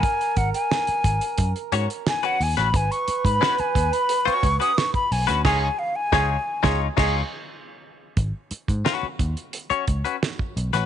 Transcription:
<<
  \new Staff \with { instrumentName = "Flute" } { \time 4/4 \key gis \dorian \tempo 4 = 88 gis''8 fis''16 gis''4. r8. gis''16 fis''16 gis''16 b''16 | gis''16 cis'''8 b''8 gis''8 b''8 cis'''8 dis'''16 cis'''16 b''16 gis''16 b''16 | gis''16 gis''16 eis''16 gis''4 r2 r16 | r1 | }
  \new Staff \with { instrumentName = "Trombone" } { \time 4/4 \key gis \dorian ais'2.~ ais'8 r8 | b'2.~ b'8 r8 | gis'8 r8 gis'8 r16 gis'8 gis'8 r4 r16 | r1 | }
  \new Staff \with { instrumentName = "Clean electric guitar" } { \time 4/4 \key gis \dorian r2 r8 <cis' fis' cis''>16 r8 <cis' fis' b'>16 r16 <cis' fis' b'>16 | r4 <cis' fis' b'>16 r4 <cis' fis' cis''>16 r16 <cis' fis' b'>16 r8. <cis' fis' b'>16 | <dis' eis' cis''>8 r8 <dis' eis' cis''>8 r16 <dis' eis' cis''>8 <dis' eis' cis''>8 r4 r16 | r4 <cis' fis' b'>16 r4 <cis' fis' cis''>16 r16 <cis' fis' b'>16 r8. <cis' fis' b'>16 | }
  \new Staff \with { instrumentName = "Picked electric bass" } { \clef bass \time 4/4 \key gis \dorian r8 gis,,16 r8. gis,,16 r16 fis,16 r16 gis,16 r8. dis,16 a,,16 | gis,,16 r8 gis,16 r8 dis,16 r8. cis,16 r8. b,,16 d,16 | cis,8 r8 cis,8 r16 cis,8 cis,8 r4 r16 | gis,,16 r8 gis,16 r8 dis,16 r8. cis,16 r8. b,,16 a,,16 | }
  \new DrumStaff \with { instrumentName = "Drums" } \drummode { \time 4/4 <hh bd>16 hh16 <hh bd>16 hh16 sn16 hh16 <hh bd>16 hh16 <hh bd>16 hh16 hh16 hh16 sn16 hh16 hho16 <hh sn>16 | <hh bd>16 hh16 hh16 <hh bd>16 sn16 hh16 <hh bd>16 hh16 hh16 hh16 <hh bd>16 hh16 sn16 <hh bd>16 hho16 <hh sn>16 | <cymc bd sn>4 <bd sn>8. <bd sn>16 r16 <cymc bd sn>8. r4 | <hh bd>8 hh16 <hh bd>16 sn8 <hh bd>16 hh16 hh16 hh16 <hh bd>16 hh16 sn16 bd16 hh16 <hh sn>16 | }
>>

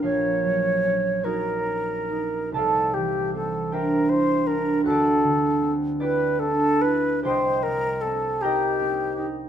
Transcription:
<<
  \new Staff \with { instrumentName = "Flute" } { \time 6/8 \key c \dorian \tempo 4. = 51 des''4. bes'4. | a'8 g'8 a'8 bes'8 c''8 bes'8 | a'4 r8 ces''8 a'8 ces''8 | c''8 bes'8 a'8 g'4. | }
  \new Staff \with { instrumentName = "Harp" } { \time 6/8 \key c \dorian << { <f' bes' des'' ees'' f'' g''>4. <ges' bes' des''>4. | <a' d'' f'' a''>4. <g' c'' e'' g''>4. | <fis' ces'' d'' fis''>4. <g' ces'' d''>4. | <g' c'' ees'' g''>4. <bes' ees'' g'' bes''>4. | } \\ { <bes,, f bes>8 ges8 des'8 ees'8 des'8 ees'8 | c,8 e8 c'8 d'8 e'8 d'8 | d,8 d8 c'8 e'8 d'8 e'8 | c,8 g8 c'8 ees'8 c'8 ees'8 | } >> }
>>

